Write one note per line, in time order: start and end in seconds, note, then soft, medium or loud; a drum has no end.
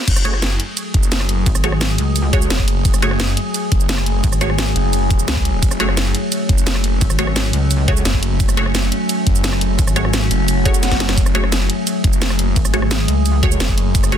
0.08 0.58 F#1 loud
0.08 14.18 F#3 medium
0.08 14.18 A3 medium
0.08 5.60 G#4 medium
0.08 kick loud
0.08 closed hi-hat medium
0.08 crash loud
0.08 ride medium
0.08 shaker medium
0.16 cross-stick soft
0.16 shaker medium
0.25 0.34 A3 loud
0.25 0.34 F#4 medium
0.25 0.34 G#4 medium
0.25 0.34 C#5 loud
0.25 cross-stick medium
0.25 closed hi-hat loud
0.34 cross-stick medium
0.42 snare loud
0.42 closed hi-hat medium
0.42 ride medium
0.42 shaker medium
0.60 closed hi-hat loud
0.77 closed hi-hat medium
0.77 ride medium
0.77 shaker medium
0.94 1.45 F#1 loud
0.94 kick loud
0.94 closed hi-hat loud
1.03 shaker medium
1.12 snare loud
1.12 closed hi-hat medium
1.12 ride medium
1.12 shaker medium
1.20 cross-stick medium
1.29 closed hi-hat loud
1.46 1.97 G#1 loud
1.46 kick loud
1.46 closed hi-hat medium
1.46 ride medium
1.46 shaker soft
1.55 cross-stick medium
1.55 shaker medium
1.64 1.72 A3 medium
1.64 1.72 F#4 medium
1.64 1.72 G#4 medium
1.64 1.72 C#5 medium
1.64 cross-stick medium
1.64 closed hi-hat medium
1.72 cross-stick medium
1.81 snare loud
1.81 closed hi-hat medium
1.81 ride medium
1.81 shaker soft
1.98 2.49 C#2 loud
1.98 closed hi-hat loud
2.16 closed hi-hat medium
2.16 ride medium
2.16 shaker soft
2.33 3.00 A3 medium
2.33 3.00 F#4 medium
2.33 3.00 G#4 medium
2.33 3.00 C#5 loud
2.33 kick loud
2.33 closed hi-hat loud
2.42 shaker medium
2.50 2.84 F#1 loud
2.50 snare loud
2.50 closed hi-hat medium
2.50 ride medium
2.50 shaker soft
2.59 kick medium
2.68 closed hi-hat medium
2.85 3.36 F#1 loud
2.85 kick loud
2.85 closed hi-hat medium
2.85 ride medium
2.85 shaker soft
2.94 cross-stick soft
2.94 shaker medium
3.02 3.11 A3 loud
3.02 3.11 F#4 medium
3.02 3.11 G#4 medium
3.02 3.11 C#5 loud
3.02 cross-stick soft
3.02 closed hi-hat medium
3.11 cross-stick medium
3.20 snare loud
3.20 closed hi-hat medium
3.20 ride medium
3.20 shaker soft
3.37 closed hi-hat loud
3.54 closed hi-hat medium
3.54 ride medium
3.54 shaker soft
3.72 4.22 F#1 loud
3.72 kick loud
3.72 closed hi-hat medium
3.80 shaker medium
3.89 snare loud
3.89 closed hi-hat medium
3.89 ride medium
3.89 shaker soft
3.98 cross-stick medium
4.06 closed hi-hat medium
4.24 4.74 G#1 loud
4.24 kick loud
4.24 closed hi-hat medium
4.24 ride medium
4.24 shaker soft
4.32 cross-stick soft
4.32 shaker medium
4.41 4.50 A3 medium
4.41 4.50 F#4 medium
4.41 4.50 G#4 medium
4.41 4.50 C#5 medium
4.41 cross-stick soft
4.41 closed hi-hat medium
4.41 shaker soft
4.50 cross-stick medium
4.58 snare loud
4.58 closed hi-hat medium
4.58 ride medium
4.58 shaker soft
4.76 5.26 F#1 loud
4.76 closed hi-hat medium
4.93 closed hi-hat medium
4.93 ride medium
4.93 shaker soft
5.10 kick loud
5.10 closed hi-hat medium
5.10 shaker soft
5.19 shaker medium
5.28 5.61 C#2 loud
5.28 snare loud
5.28 closed hi-hat medium
5.28 ride medium
5.28 shaker soft
5.37 kick medium
5.45 closed hi-hat medium
5.62 6.13 F#1 loud
5.62 11.15 C#4 medium
5.62 kick loud
5.62 closed hi-hat medium
5.62 ride medium
5.62 shaker soft
5.71 cross-stick soft
5.71 shaker medium
5.80 5.89 A3 loud
5.80 5.89 F#4 medium
5.80 5.89 G#4 medium
5.80 5.89 C#5 loud
5.80 cross-stick soft
5.80 closed hi-hat medium
5.89 cross-stick soft
5.97 snare loud
5.97 closed hi-hat medium
5.97 ride medium
5.97 shaker medium
6.15 closed hi-hat medium
6.32 closed hi-hat medium
6.32 ride medium
6.32 shaker medium
6.49 7.00 F#1 loud
6.49 kick loud
6.49 closed hi-hat medium
6.58 shaker medium
6.67 snare loud
6.67 closed hi-hat medium
6.67 ride medium
6.67 shaker soft
6.75 cross-stick soft
6.84 closed hi-hat medium
7.01 7.52 G#1 loud
7.01 kick loud
7.01 closed hi-hat medium
7.01 ride medium
7.01 shaker medium
7.10 cross-stick soft
7.10 shaker medium
7.19 7.27 A3 medium
7.19 7.27 F#4 medium
7.19 7.27 G#4 medium
7.19 7.27 C#5 medium
7.19 cross-stick soft
7.19 closed hi-hat loud
7.27 cross-stick soft
7.36 snare loud
7.36 closed hi-hat medium
7.36 ride medium
7.36 shaker medium
7.53 8.04 C#2 loud
7.53 closed hi-hat loud
7.71 closed hi-hat medium
7.71 ride medium
7.71 shaker medium
7.88 8.55 A3 medium
7.88 8.55 F#4 medium
7.88 8.55 G#4 medium
7.88 8.55 C#5 loud
7.88 kick loud
7.88 closed hi-hat medium
7.97 shaker medium
8.05 8.39 F#1 loud
8.05 snare loud
8.05 closed hi-hat medium
8.05 ride medium
8.05 shaker medium
8.14 kick medium
8.23 closed hi-hat medium
8.40 8.91 F#1 loud
8.40 kick loud
8.40 closed hi-hat medium
8.40 ride medium
8.40 shaker medium
8.49 cross-stick soft
8.49 shaker medium
8.57 8.66 A3 loud
8.57 8.66 F#4 medium
8.57 8.66 G#4 medium
8.57 8.66 C#5 loud
8.57 cross-stick soft
8.57 closed hi-hat loud
8.66 cross-stick medium
8.75 snare loud
8.75 closed hi-hat medium
8.75 ride medium
8.75 shaker medium
8.92 closed hi-hat loud
9.09 closed hi-hat medium
9.09 ride medium
9.09 shaker medium
9.27 9.77 F#1 loud
9.27 kick loud
9.27 closed hi-hat loud
9.35 shaker medium
9.44 snare loud
9.44 closed hi-hat medium
9.44 ride medium
9.44 shaker medium
9.53 cross-stick soft
9.61 closed hi-hat loud
9.79 10.29 G#1 loud
9.79 kick loud
9.79 closed hi-hat medium
9.79 ride medium
9.79 shaker medium
9.87 cross-stick soft
9.87 shaker medium
9.96 10.05 A3 medium
9.96 10.05 F#4 medium
9.96 10.05 G#4 medium
9.96 10.05 C#5 medium
9.96 cross-stick medium
9.96 closed hi-hat loud
9.96 shaker soft
10.05 cross-stick medium
10.13 snare loud
10.13 closed hi-hat medium
10.13 ride medium
10.13 shaker medium
10.31 11.16 F#1 loud
10.31 closed hi-hat loud
10.31 shaker soft
10.48 closed hi-hat medium
10.48 ride medium
10.48 swell medium
10.48 shaker medium
10.65 11.33 A3 medium
10.65 11.33 F#4 medium
10.65 11.33 G#4 medium
10.65 11.33 C#5 loud
10.65 kick loud
10.65 closed hi-hat loud
10.65 shaker soft
10.74 shaker medium
10.83 snare medium
10.83 closed hi-hat medium
10.83 ride medium
10.83 shaker medium
10.91 kick medium
10.91 snare medium
10.91 shaker soft
11.00 snare medium
11.00 closed hi-hat loud
11.09 snare medium
11.17 11.68 F#1 medium
11.17 14.18 G#4 medium
11.17 kick loud
11.17 closed hi-hat medium
11.17 ride medium
11.17 shaker medium
11.26 cross-stick medium
11.26 shaker medium
11.35 11.44 A3 loud
11.35 11.44 F#4 medium
11.35 11.44 G#4 medium
11.35 11.44 C#5 loud
11.35 cross-stick medium
11.35 closed hi-hat loud
11.44 cross-stick medium
11.52 snare loud
11.52 closed hi-hat medium
11.52 ride medium
11.52 shaker medium
11.70 closed hi-hat loud
11.87 closed hi-hat medium
11.87 ride medium
11.87 shaker soft
12.04 12.55 F#1 loud
12.04 kick loud
12.04 closed hi-hat loud
12.13 shaker medium
12.22 snare loud
12.22 closed hi-hat medium
12.22 ride medium
12.22 shaker soft
12.30 cross-stick medium
12.39 closed hi-hat loud
12.56 13.07 G#1 loud
12.56 kick loud
12.56 closed hi-hat medium
12.56 ride medium
12.56 shaker soft
12.65 cross-stick medium
12.65 shaker medium
12.74 12.82 A3 medium
12.74 12.82 F#4 medium
12.74 12.82 G#4 medium
12.74 12.82 C#5 medium
12.74 cross-stick medium
12.74 closed hi-hat loud
12.82 cross-stick medium
12.91 snare loud
12.91 closed hi-hat medium
12.91 ride medium
12.91 shaker soft
13.08 13.59 C#2 loud
13.08 closed hi-hat loud
13.26 closed hi-hat medium
13.26 ride medium
13.26 shaker soft
13.43 14.10 A3 medium
13.43 14.10 F#4 medium
13.43 14.10 G#4 medium
13.43 14.10 C#5 loud
13.43 kick loud
13.43 closed hi-hat loud
13.52 shaker medium
13.60 13.93 F#1 loud
13.60 snare loud
13.60 closed hi-hat medium
13.60 ride medium
13.60 shaker soft
13.69 kick medium
13.78 closed hi-hat medium
13.95 14.18 F#1 loud
13.95 kick loud
13.95 closed hi-hat medium
13.95 ride medium
13.95 shaker soft
14.04 cross-stick medium
14.04 shaker medium
14.12 14.18 A3 loud
14.12 14.18 F#4 medium
14.12 14.18 G#4 medium
14.12 14.18 C#5 loud
14.12 cross-stick medium
14.12 closed hi-hat medium